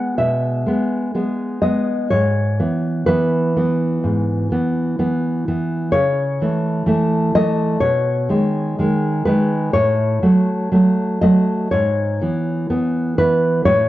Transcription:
0.00 0.65 G#3 soft
0.00 0.67 B3 soft
0.00 0.16 F#5 medium
0.18 0.65 B2 soft
0.18 1.59 E5 medium
0.66 1.14 G#3 soft
0.66 1.14 B3 soft
1.15 1.61 G#3 soft
1.15 1.61 B3 soft
1.62 2.08 G#3 soft
1.62 2.08 B3 soft
1.62 2.09 D#5 medium
2.10 2.58 G#2 medium
2.10 3.03 C#5 medium
2.59 3.06 E3 soft
2.59 3.07 B3 soft
3.06 3.55 E3 soft
3.06 3.56 B3 soft
3.06 5.89 B4 medium
3.56 4.51 E3 soft
3.56 4.51 B3 medium
4.04 4.50 G#2 soft
4.52 4.98 E3 soft
4.52 4.98 B3 soft
4.99 5.47 E3 soft
4.99 5.47 B3 soft
5.48 5.91 E3 soft
5.48 5.91 B3 soft
5.92 6.39 C#3 medium
5.92 7.29 C#5 medium
6.42 6.85 E3 soft
6.42 6.86 A3 soft
6.86 7.34 E3 soft
6.86 7.36 A3 medium
7.35 7.78 E3 medium
7.35 7.78 A3 medium
7.35 7.80 D#5 medium
7.81 8.28 B2 medium
7.81 9.21 C#5 medium
8.29 8.77 D#3 soft
8.29 8.78 G#3 medium
8.79 9.25 D#3 soft
8.79 9.26 G#3 medium
9.25 9.70 D#3 soft
9.25 9.71 G#3 medium
9.25 9.72 B4 medium
9.73 10.21 A2 medium
9.73 11.16 C#5 medium
10.22 10.70 F#3 soft
10.22 10.71 A3 medium
10.71 11.21 F#3 medium
10.71 11.21 A3 medium
11.21 11.67 F#3 medium
11.21 11.67 A3 medium
11.21 11.69 D#5 medium
11.71 12.19 G#2 medium
11.71 13.14 C#5 medium
12.21 12.69 E3 soft
12.21 12.69 B3 medium
12.70 13.17 E3 soft
12.70 13.17 B3 medium
13.18 13.62 E3 soft
13.18 13.62 B3 medium
13.18 13.64 B4 medium
13.65 13.89 A2 medium
13.65 13.89 C#5 medium

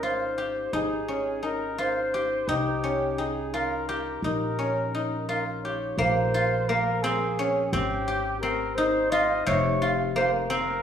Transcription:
0.00 0.70 G#1 medium
0.00 1.08 C#4 medium
0.00 0.73 D#4 medium
0.00 1.78 F4 medium
0.00 0.37 G4 medium
0.00 0.76 C5 medium
0.38 2.14 G4 medium
0.73 2.45 G#1 medium
0.73 1.42 D#4 medium
0.73 1.45 G#4 medium
1.08 2.83 C#4 medium
1.43 2.48 D#4 medium
1.43 1.82 A#4 medium
1.78 3.53 F4 medium
1.78 2.50 C5 medium
2.14 3.88 G4 medium
2.48 4.20 C2 medium
2.48 3.18 D#4 medium
2.48 3.20 G4 medium
2.84 4.58 C#4 medium
3.18 4.24 D#4 medium
3.18 3.55 G#4 medium
3.54 5.28 F4 medium
3.54 3.88 A#4 medium
3.89 5.64 G4 medium
3.89 4.21 A#4 medium
4.22 5.94 A#1 medium
4.22 4.94 D#4 medium
4.22 5.25 A#4 medium
4.59 7.10 C#4 medium
4.95 7.65 D#4 medium
5.29 6.34 F4 medium
5.29 5.44 A#4 medium
5.64 8.00 G4 medium
5.64 5.96 C#5 medium
5.97 7.69 A#1 medium
5.97 6.69 A#3 medium
5.97 6.70 C5 medium
6.34 8.87 F4 medium
6.68 9.91 A#3 medium
6.68 7.04 A#4 medium
7.02 7.45 C4 medium
7.02 7.66 G#4 medium
7.39 7.79 C#4 medium
7.66 7.73 G#4 medium
7.71 9.43 G#1 medium
7.71 8.42 C4 medium
7.71 8.40 G4 medium
8.08 10.43 G4 medium
8.41 10.50 C4 medium
8.41 8.77 A#4 medium
8.75 10.82 D#4 medium
8.75 9.12 C5 medium
9.10 9.81 F4 medium
9.10 9.46 D#5 medium
9.46 10.82 F1 medium
9.46 10.82 C3 medium
9.46 9.86 C#5 medium
9.82 10.82 F4 medium
10.16 10.82 A#3 medium
10.16 10.32 C5 medium
10.50 10.82 C4 medium
10.50 10.82 A#4 medium

